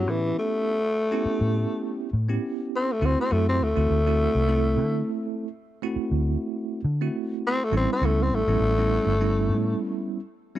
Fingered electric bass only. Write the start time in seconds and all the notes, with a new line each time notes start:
0.07 A2
1.25 muted fingered electric bass stroke
1.41 A2
2.13 A2
3.02 D2
3.32 F#2
3.61 D2
3.77 D2
3.90 D2
4.35 C2
4.77 D3
5.96 muted fingered electric bass stroke
6.11 D2
6.84 D3
7.72 A1
8.01 C#2
8.31 A1
8.47 A1
8.60 A1
9.07 G1
9.49 A2